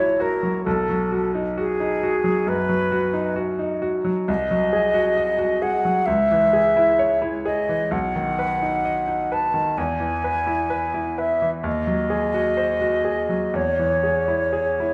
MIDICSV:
0, 0, Header, 1, 3, 480
1, 0, Start_track
1, 0, Tempo, 903614
1, 349, Time_signature, 4, 2, 24, 8
1, 3228, Tempo, 927357
1, 5148, Tempo, 936037
1, 6588, Tempo, 991736
1, 7722, End_track
2, 0, Start_track
2, 0, Title_t, "Flute"
2, 0, Program_c, 0, 73
2, 0, Note_on_c, 0, 73, 70
2, 112, Note_on_c, 0, 70, 66
2, 120, Note_off_c, 0, 73, 0
2, 339, Note_off_c, 0, 70, 0
2, 342, Note_on_c, 0, 69, 65
2, 697, Note_off_c, 0, 69, 0
2, 845, Note_on_c, 0, 68, 68
2, 1317, Note_on_c, 0, 71, 72
2, 1325, Note_off_c, 0, 68, 0
2, 1797, Note_off_c, 0, 71, 0
2, 2268, Note_on_c, 0, 75, 79
2, 2986, Note_on_c, 0, 78, 69
2, 2993, Note_off_c, 0, 75, 0
2, 3218, Note_on_c, 0, 76, 86
2, 3226, Note_off_c, 0, 78, 0
2, 3808, Note_off_c, 0, 76, 0
2, 3940, Note_on_c, 0, 75, 69
2, 4182, Note_on_c, 0, 78, 75
2, 4190, Note_off_c, 0, 75, 0
2, 4909, Note_on_c, 0, 81, 67
2, 4917, Note_off_c, 0, 78, 0
2, 5141, Note_on_c, 0, 80, 66
2, 5148, Note_off_c, 0, 81, 0
2, 5865, Note_on_c, 0, 76, 64
2, 5872, Note_off_c, 0, 80, 0
2, 6024, Note_off_c, 0, 76, 0
2, 6108, Note_on_c, 0, 75, 75
2, 7052, Note_on_c, 0, 73, 67
2, 7059, Note_off_c, 0, 75, 0
2, 7722, Note_off_c, 0, 73, 0
2, 7722, End_track
3, 0, Start_track
3, 0, Title_t, "Grand piano"
3, 0, Program_c, 1, 0
3, 0, Control_c, 1, 64, 127
3, 0, Note_on_c, 1, 34, 51
3, 0, Note_on_c, 1, 54, 37
3, 0, Note_on_c, 1, 64, 43
3, 0, Note_on_c, 1, 66, 43
3, 55, Note_off_c, 1, 66, 0
3, 105, Note_on_c, 1, 66, 42
3, 175, Note_off_c, 1, 64, 0
3, 227, Note_off_c, 1, 54, 0
3, 227, Note_on_c, 1, 54, 37
3, 299, Note_off_c, 1, 66, 0
3, 327, Note_off_c, 1, 34, 0
3, 349, Note_off_c, 1, 54, 0
3, 353, Note_on_c, 1, 35, 51
3, 358, Control_c, 1, 64, 0
3, 448, Control_c, 1, 64, 127
3, 474, Note_on_c, 1, 54, 38
3, 592, Note_on_c, 1, 66, 41
3, 671, Note_off_c, 1, 54, 0
3, 715, Note_on_c, 1, 63, 39
3, 790, Note_off_c, 1, 66, 0
3, 836, Note_on_c, 1, 66, 42
3, 910, Note_off_c, 1, 63, 0
3, 956, Note_on_c, 1, 63, 41
3, 1030, Note_off_c, 1, 66, 0
3, 1079, Note_on_c, 1, 66, 40
3, 1149, Note_off_c, 1, 63, 0
3, 1190, Note_on_c, 1, 54, 38
3, 1270, Note_off_c, 1, 66, 0
3, 1299, Note_off_c, 1, 35, 0
3, 1310, Note_on_c, 1, 42, 44
3, 1386, Note_off_c, 1, 54, 0
3, 1429, Note_on_c, 1, 54, 39
3, 1505, Note_off_c, 1, 42, 0
3, 1549, Note_on_c, 1, 66, 43
3, 1624, Note_off_c, 1, 54, 0
3, 1664, Note_on_c, 1, 63, 43
3, 1745, Note_off_c, 1, 66, 0
3, 1784, Note_on_c, 1, 66, 43
3, 1863, Note_off_c, 1, 63, 0
3, 1907, Note_on_c, 1, 63, 41
3, 1983, Note_off_c, 1, 66, 0
3, 2028, Note_on_c, 1, 66, 44
3, 2104, Note_off_c, 1, 63, 0
3, 2149, Note_on_c, 1, 54, 39
3, 2225, Note_off_c, 1, 66, 0
3, 2273, Note_off_c, 1, 54, 0
3, 2274, Note_on_c, 1, 36, 54
3, 2286, Control_c, 1, 64, 0
3, 2358, Control_c, 1, 64, 127
3, 2395, Note_on_c, 1, 54, 40
3, 2511, Note_on_c, 1, 68, 43
3, 2586, Note_off_c, 1, 54, 0
3, 2625, Note_on_c, 1, 66, 43
3, 2702, Note_off_c, 1, 68, 0
3, 2745, Note_on_c, 1, 75, 42
3, 2817, Note_off_c, 1, 66, 0
3, 2860, Note_on_c, 1, 66, 43
3, 2936, Note_off_c, 1, 75, 0
3, 2985, Note_on_c, 1, 68, 43
3, 3053, Note_off_c, 1, 66, 0
3, 3107, Note_on_c, 1, 54, 40
3, 3176, Note_off_c, 1, 68, 0
3, 3202, Note_off_c, 1, 36, 0
3, 3226, Note_on_c, 1, 37, 49
3, 3227, Note_off_c, 1, 54, 0
3, 3232, Control_c, 1, 64, 0
3, 3314, Control_c, 1, 64, 127
3, 3350, Note_on_c, 1, 52, 39
3, 3464, Note_on_c, 1, 68, 39
3, 3539, Note_off_c, 1, 52, 0
3, 3585, Note_on_c, 1, 64, 42
3, 3656, Note_off_c, 1, 68, 0
3, 3700, Note_on_c, 1, 73, 46
3, 3776, Note_off_c, 1, 64, 0
3, 3819, Note_on_c, 1, 64, 41
3, 3894, Note_off_c, 1, 73, 0
3, 3941, Note_on_c, 1, 68, 42
3, 4013, Note_off_c, 1, 64, 0
3, 4063, Note_on_c, 1, 52, 39
3, 4135, Note_off_c, 1, 68, 0
3, 4164, Note_off_c, 1, 37, 0
3, 4177, Note_on_c, 1, 35, 50
3, 4184, Note_off_c, 1, 52, 0
3, 4191, Control_c, 1, 64, 0
3, 4283, Control_c, 1, 64, 127
3, 4305, Note_on_c, 1, 51, 41
3, 4424, Note_on_c, 1, 71, 40
3, 4497, Note_off_c, 1, 51, 0
3, 4545, Note_on_c, 1, 63, 43
3, 4617, Note_off_c, 1, 71, 0
3, 4663, Note_on_c, 1, 75, 41
3, 4737, Note_off_c, 1, 63, 0
3, 4779, Note_on_c, 1, 63, 41
3, 4856, Note_off_c, 1, 75, 0
3, 4905, Note_on_c, 1, 71, 40
3, 4974, Note_off_c, 1, 63, 0
3, 5020, Note_on_c, 1, 51, 37
3, 5097, Note_off_c, 1, 71, 0
3, 5120, Note_off_c, 1, 35, 0
3, 5142, Note_off_c, 1, 51, 0
3, 5143, Note_on_c, 1, 40, 49
3, 5151, Control_c, 1, 64, 0
3, 5218, Control_c, 1, 64, 127
3, 5258, Note_on_c, 1, 52, 36
3, 5382, Note_on_c, 1, 71, 37
3, 5451, Note_off_c, 1, 52, 0
3, 5498, Note_on_c, 1, 64, 42
3, 5575, Note_off_c, 1, 71, 0
3, 5617, Note_on_c, 1, 71, 44
3, 5696, Note_off_c, 1, 64, 0
3, 5740, Note_on_c, 1, 64, 41
3, 5817, Note_off_c, 1, 71, 0
3, 5863, Note_on_c, 1, 71, 37
3, 5939, Note_off_c, 1, 64, 0
3, 5985, Note_on_c, 1, 52, 38
3, 6059, Note_off_c, 1, 71, 0
3, 6088, Note_off_c, 1, 40, 0
3, 6096, Note_on_c, 1, 39, 50
3, 6106, Note_off_c, 1, 52, 0
3, 6116, Control_c, 1, 64, 0
3, 6178, Control_c, 1, 64, 127
3, 6217, Note_on_c, 1, 54, 35
3, 6335, Note_on_c, 1, 68, 40
3, 6410, Note_off_c, 1, 54, 0
3, 6458, Note_on_c, 1, 66, 38
3, 6530, Note_off_c, 1, 68, 0
3, 6576, Note_on_c, 1, 72, 35
3, 6652, Note_off_c, 1, 66, 0
3, 6691, Note_on_c, 1, 66, 39
3, 6768, Note_off_c, 1, 72, 0
3, 6807, Note_on_c, 1, 68, 36
3, 6885, Note_off_c, 1, 66, 0
3, 6926, Note_on_c, 1, 54, 31
3, 7002, Note_off_c, 1, 68, 0
3, 7029, Note_off_c, 1, 39, 0
3, 7043, Note_on_c, 1, 40, 43
3, 7049, Note_off_c, 1, 54, 0
3, 7064, Control_c, 1, 64, 0
3, 7130, Control_c, 1, 64, 127
3, 7168, Note_on_c, 1, 52, 33
3, 7285, Note_on_c, 1, 68, 33
3, 7361, Note_off_c, 1, 52, 0
3, 7404, Note_on_c, 1, 64, 37
3, 7482, Note_off_c, 1, 68, 0
3, 7523, Note_on_c, 1, 68, 38
3, 7606, Note_off_c, 1, 64, 0
3, 7656, Note_on_c, 1, 64, 36
3, 7722, Note_off_c, 1, 40, 0
3, 7722, Note_off_c, 1, 64, 0
3, 7722, Note_off_c, 1, 68, 0
3, 7722, End_track
0, 0, End_of_file